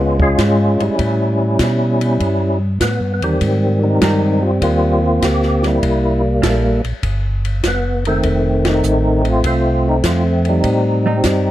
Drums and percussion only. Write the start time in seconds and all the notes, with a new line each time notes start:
0.20 kick
0.38 kick, snare, hi-hat pedal, ride
0.80 ride
0.99 kick, ride
1.59 kick, snare, hi-hat pedal, ride
2.01 ride
2.20 kick, ride
2.81 kick, snare, hi-hat pedal, ride
3.22 ride
3.41 kick, ride
4.01 kick, snare, hi-hat pedal, ride
4.62 kick, ride
5.22 kick, snare, hi-hat pedal, ride
5.42 snare
5.63 snare, ride
5.83 kick, ride
6.43 kick, snare, hi-hat pedal, ride
6.84 ride
7.03 kick, ride
7.45 ride
7.63 kick, snare, hi-hat pedal, ride
8.05 ride
8.23 kick, ride
8.65 snare, ride
8.83 hi-hat pedal
9.25 ride
9.44 kick, ride
10.04 kick, snare, hi-hat pedal, ride
10.45 ride
10.64 kick, ride
11.24 kick, snare, hi-hat pedal, ride